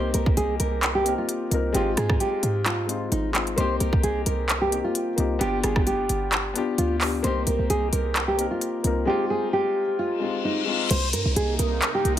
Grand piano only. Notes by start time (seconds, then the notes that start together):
Already playing: A#3 C4 D#4 G4
1.04 A#3 C4 D#4
1.08 A#4
1.50 A#3 C4 D#4
1.54 A#4
1.73 G#3 C4 D#4
1.77 F4
2.86 G#3 C4 D#4
2.90 F4
3.32 G#3 C4 D#4
3.37 F4
3.56 A#3 C4 D#4
3.60 G4
4.70 A#3 C4 D#4
4.74 G4
5.16 A#3 C4 D#4
5.20 G4
5.39 B3 D4 F4
5.43 G4
6.54 B3 D4 F4
6.58 G4
7.00 B3 D4 F4
7.04 G4
7.23 A#3 C4 D#4
7.27 G4
8.37 A#3 C4 D#4
8.41 A#4
8.83 A#3 C4 D#4
8.87 A#4
9.05 G#3 C4 D#4
9.09 F4
10.19 G#3 C4 D#4
10.23 F4
10.65 G#3 C4 D#4
10.69 F4